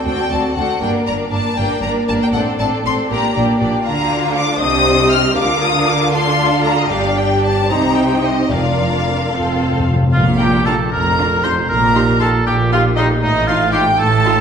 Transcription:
0.05 cello section D2, double bass section D2, viola section C4 F#4, violin section A4 D5 G5
0.30 cello section D2, double bass section D2, viola section C4 F#4, violin section A4 D5 A5
0.55 cello section D2, double bass section D2, viola section C4 F#4, violin section A4 D5 F#5
0.81 double bass section G1, cello section G2, viola section A#3 D4, violin section A#4 D5 G5
1.06 double bass section G1, cello section G2, viola section A#3 D4, violin section A#4 D5 A#5
1.31 double bass section G1, cello section G2, viola section A#3 D4, violin section A#4 D5 A5
1.56 double bass section G1, cello section G2, viola section A#3 D4, violin section A#4 D5 G5
1.82 double bass section G1, cello section G2, viola section A#3 D4, violin section A#4 D5 A#5
2.08 double bass section G1, cello section G2, viola section A#3 D4, violin section A#4 D5 A5
2.22 violin section G5
2.33 double bass section A1, cello section A2, viola section C4 D4, violin section A4 D5 F#5
2.59 double bass section A1, cello section A2, viola section C4 D4, violin section A4 D5 A5
2.84 double bass section A1, cello section A2, viola section C4 D4, violin section A4 D5 C6
3.09 double bass section A#1, cello section A#2, viola section A#3 D4, violin section G4 D5 A#5
3.34 double bass section A#1, cello section A#2, viola section A#3 D4, violin section G4 D5
3.59 double bass section A#1, cello section A#2, viola section A#3 D4, violin section G4 D5
3.83 double bass section D2, cello section D3, viola section D4, violin section F4 F5 A#5
4.36 violin section D6
4.60 double bass section C2, cello section C3, viola section G4, violin section C5 D#5 D#6
5.11 violin section F6
5.36 double bass section D2, cello section D3, viola section D4 F4, violin section A#4 F5 D6
5.64 violin section D#6
5.89 violin section D6
6.13 viola section F4, violin section A4 F5 C6
6.64 violin section A#5
6.79 violin section D#5
6.90 double bass section G1, cello section G2, violin section G4 D5 F5, viola section G4
7.16 violin section G5
7.45 violin section A5
7.70 double bass section C2, cello section C3, viola section D#4, violin section G4 C5 A#5
7.97 violin section G5
8.24 violin section D#5
8.50 double bass section F1, cello section F2, timpani F2, viola section D4 F4, violin section A#4 D5 F5
9.31 double bass section F1, cello section F2, viola section C4 F4, violin section A4 F5
9.40 timpani F2
9.48 timpani F2
9.56 timpani F2
9.64 timpani F2
9.72 timpani F2
9.80 timpani F2
9.88 timpani F2
9.96 timpani F2
10.03 timpani F2
10.13 double bass section A#1, timpani A#2, cello section A#2, oboe F4, violin section F5
10.39 viola section D4 F4, oboe G4, violin section G5 A#5
10.65 viola section D4 F4, oboe A4, violin section A5 A#5
10.91 double bass section F1, cello section F2, oboe A#4, violin section A#5
11.18 viola section D4 F4, violin section A#5
11.43 viola section D4 F4, oboe C5, violin section A#5 C6
11.68 double bass section A#1, cello section A#2, oboe A#4, violin section A#5
11.94 viola section D#4 G4, violin section C6
12.20 viola section D#4 G4, oboe A4, violin section A5 C6
12.46 double bass section A#1, cello section A#2, oboe G4, violin section G5
12.72 viola section D#4 G4, oboe F4, violin section F5 C6
12.97 oboe D#4, viola section D#4 G4, violin section D#5 C6
13.22 double bass section A1, cello section A2, oboe D#4, violin section D#5
13.47 viola section D#4 F4, oboe F4, violin section F5 C6
13.72 viola section D#4 F4, oboe G4, violin section G5 C6
13.98 double bass section A1, cello section A2, oboe A4, violin section A5
14.25 viola section D#4 F4, violin section C6

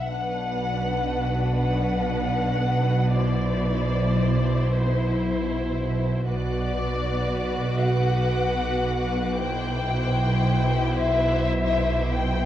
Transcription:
0.05 double bass section B1, synth drone B1, cello section B2, violin section D4 B4 F#5
1.60 violin section F#5
3.17 violin section E4 C5 D5
4.74 violin section C5
6.28 synth drone B1, double bass section B1, cello section B2, violin section F#4 B4 D5 D6 F#6
7.84 violin section F#5
9.39 violin section E4 C5 G5
10.96 violin section E5
12.13 violin section G5

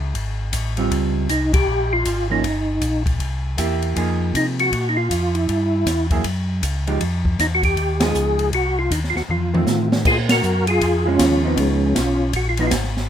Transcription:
Already playing: tonewheel organ C#2
0.15 tonewheel organ G#1, kick, ride
0.52 tonewheel organ A1, kick, hi-hat pedal, ride
0.77 hollow-body jazz guitar G3 C4 F4, ride
0.91 tonewheel organ C#2, kick, ride
1.29 tonewheel organ C2 D#4, kick, hi-hat pedal, ride
1.54 tonewheel organ G4, kick, ride
1.67 tonewheel organ A#1
1.93 tonewheel organ F4
2.05 tonewheel organ G#1, kick, hi-hat pedal, ride
2.30 hollow-body jazz guitar F3 A#3 C#4, tonewheel organ D#4
2.44 tonewheel organ G1, kick, ride
2.81 tonewheel organ A#1, kick, hi-hat pedal, ride
3.06 kick, ride
3.19 tonewheel organ C2, kick, ride
3.57 tonewheel organ E2, hollow-body jazz guitar A#3 E4 G4, kick, hi-hat pedal, ride
3.82 ride
3.96 tonewheel organ F2, hollow-body jazz guitar F3 A#3 D#4 G#4, kick, ride
4.34 tonewheel organ C3 D#4, kick, hi-hat pedal, ride
4.59 tonewheel organ F#4, ride
4.72 tonewheel organ A#2, kick, ride
4.89 tonewheel organ D#4
4.97 tonewheel organ F4
5.10 tonewheel organ F2, kick, hi-hat pedal, ride
5.34 tonewheel organ E4, ride
5.48 tonewheel organ G2, kick, ride
5.86 tonewheel organ E2, kick, snare, hi-hat pedal, ride
6.11 hollow-body jazz guitar F#3 A#3 E4 G#4, kick, ride
6.24 tonewheel organ F#2, kick, ride
6.62 tonewheel organ C#2, kick, hi-hat pedal, ride
6.87 hollow-body jazz guitar F3 G#3 D#4 G4, ride
7.01 tonewheel organ F2, kick, ride
7.25 kick
7.39 tonewheel organ E2 D#4, kick, snare, hi-hat pedal, ride
7.55 tonewheel organ F#4
7.63 tonewheel organ G4, kick, ride
7.76 tonewheel organ D#2, kick, ride
8.00 hollow-body jazz guitar F3 G#3 D#4, tonewheel organ G#4, snare, ride
8.15 tonewheel organ C#2, hi-hat pedal
8.39 ride
8.52 tonewheel organ C2 F#4, kick, ride
8.79 tonewheel organ F4
8.91 tonewheel organ D#2 D#4, kick, hi-hat pedal, ride
9.04 snare
9.10 tonewheel organ F4
9.15 tonewheel organ D#2 F#4, snare
9.29 tonewheel organ F2 F4, mid tom
9.54 hollow-body jazz guitar D#3 A3 C4, mid tom
9.67 tonewheel organ A2, snare, hi-hat pedal
9.92 snare
10.05 tonewheel organ A#2 F4 G#4, kick, crash
10.29 tonewheel organ F#4 A#4, snare, ride
10.43 tonewheel organ F#2, hi-hat pedal
10.67 tonewheel organ F4 G#4, ride
10.81 tonewheel organ F2, kick, ride
11.05 hollow-body jazz guitar F3 G#3 C#4, tonewheel organ C#4 F4
11.19 tonewheel organ D#2, kick, snare, hi-hat pedal, ride
11.43 hollow-body jazz guitar F3 B3 D#4, tonewheel organ C4 D#4
11.56 tonewheel organ C#2 G#3 C#4, kick, ride
11.95 tonewheel organ B1 C#4 F4, kick, snare, hi-hat pedal, ride
12.33 tonewheel organ A#1 F#4, kick, ride
12.49 tonewheel organ F4
12.57 hollow-body jazz guitar F3 B3 D#4, tonewheel organ D#4, ride
12.67 tonewheel organ F4, snare
12.71 tonewheel organ G#1, kick, hi-hat pedal, ride
12.84 snare
12.97 snare

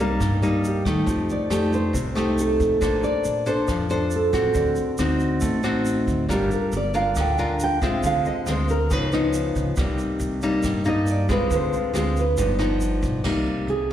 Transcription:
Already playing: upright bass C2, nylon-string guitar C3
0.00 nylon-string guitar G3 A#3 D#4 A#4
0.20 upright bass G2, nylon-string guitar G2, kick, cross-stick, closed hi-hat, shaker
0.42 nylon-string guitar G3 A#3 D#4, closed hi-hat, shaker
0.64 nylon-string guitar G4, closed hi-hat, shaker
0.85 upright bass D#2, nylon-string guitar A3 D#4 G4, kick, cross-stick, closed hi-hat, shaker
1.06 upright bass F2, nylon-string guitar F3, kick, closed hi-hat, shaker
1.29 nylon-string guitar D5, closed hi-hat, shaker
1.50 upright bass F2, nylon-string guitar A3 D#4 G4, cross-stick, closed hi-hat, shaker
1.73 nylon-string guitar C5, closed hi-hat, shaker
1.93 upright bass C2, nylon-string guitar C3, kick, closed hi-hat, shaker
2.15 nylon-string guitar A3 D#4 G4, cross-stick, closed hi-hat, shaker
2.38 nylon-string guitar A4, closed hi-hat, shaker
2.60 upright bass F2, kick, closed hi-hat, shaker
2.81 upright bass A#1, nylon-string guitar A#3 D4 A4 C5, kick, cross-stick, closed hi-hat, shaker
3.03 nylon-string guitar D5, closed hi-hat, shaker
3.24 upright bass A#1, closed hi-hat, shaker
3.46 nylon-string guitar D4 A4 C5, closed hi-hat, shaker
3.68 upright bass F2, nylon-string guitar F3, kick, cross-stick, closed hi-hat, shaker
3.90 nylon-string guitar D4 A4 C5, closed hi-hat, shaker
4.11 closed hi-hat, shaker
4.16 nylon-string guitar A4
4.33 upright bass A1, nylon-string guitar C4 F#4, kick, cross-stick, closed hi-hat, shaker
4.54 upright bass D2, nylon-string guitar D3, kick, closed hi-hat, shaker
4.76 closed hi-hat, shaker
4.98 upright bass D2, nylon-string guitar C4 D#4 F#4, cross-stick, closed hi-hat, shaker
5.20 closed hi-hat, shaker
5.41 upright bass A1, nylon-string guitar A3, kick, closed hi-hat, shaker
5.63 nylon-string guitar C4 D#4 F#4, cross-stick, closed hi-hat, shaker
5.85 closed hi-hat, shaker
6.08 upright bass D2, kick, closed hi-hat, shaker
6.29 upright bass G1, nylon-string guitar G3 D4 F4 A#4, kick, cross-stick, closed hi-hat, shaker
6.33 nylon-string guitar G4
6.51 nylon-string guitar A#4, closed hi-hat, shaker
6.72 upright bass G1, closed hi-hat, shaker
6.77 nylon-string guitar D5
6.94 nylon-string guitar D4 F4 A#4 F5, closed hi-hat, shaker
7.15 upright bass D2, nylon-string guitar D3, kick, cross-stick, closed hi-hat, shaker
7.20 nylon-string guitar G5
7.38 nylon-string guitar D4 F4 A#4 G#5, closed hi-hat, shaker
7.60 nylon-string guitar G5, closed hi-hat, shaker
7.82 upright bass C2, nylon-string guitar G#3 C4 F4 E5, kick, cross-stick, closed hi-hat, shaker
8.03 upright bass D2, nylon-string guitar D3 F5, kick, closed hi-hat, shaker
8.25 nylon-string guitar D#5, closed hi-hat, shaker
8.46 upright bass D2, nylon-string guitar G#3 C4 F4 C5, cross-stick, closed hi-hat, shaker
8.69 nylon-string guitar A#4, closed hi-hat, shaker
8.90 upright bass C#2, nylon-string guitar C#3 F3 B3 D#4 B4, kick, closed hi-hat, shaker
9.12 nylon-string guitar F3 B3 D#4, cross-stick, shaker
9.33 closed hi-hat, shaker
9.56 upright bass C#2, kick, closed hi-hat, shaker
9.76 upright bass C2, nylon-string guitar C3 G3 A#3 D#4, kick, cross-stick, closed hi-hat, shaker
9.98 closed hi-hat, shaker
10.19 upright bass C2, closed hi-hat, shaker
10.42 nylon-string guitar G3 A#3 D#4, closed hi-hat, shaker
10.63 upright bass G2, nylon-string guitar G2, kick, cross-stick, closed hi-hat, shaker
10.85 nylon-string guitar G3 A#3 D#4 D#5, closed hi-hat, shaker
11.07 nylon-string guitar D5, closed hi-hat, shaker
11.29 upright bass C2, nylon-string guitar G#3 C4 F4 B4, kick, cross-stick, closed hi-hat, shaker
11.51 upright bass D2, nylon-string guitar D3 C5, kick, closed hi-hat, shaker
11.73 nylon-string guitar F4, closed hi-hat, shaker
11.93 upright bass D2, nylon-string guitar G#3 C4 F4, cross-stick, closed hi-hat, shaker
11.98 nylon-string guitar G#4
12.16 nylon-string guitar B4, closed hi-hat, shaker
12.37 upright bass G1, nylon-string guitar G2 F3 B3 D#4, kick, closed hi-hat, shaker
12.59 nylon-string guitar F3 B3 D#4, cross-stick, closed hi-hat, shaker
12.81 closed hi-hat, shaker
13.02 upright bass B1, kick, closed hi-hat, shaker
13.24 upright bass C2, nylon-string guitar C3 G3 A#3 D#4, kick, cross-stick, crash
13.46 closed hi-hat
13.67 upright bass C2, nylon-string guitar G#4, closed hi-hat

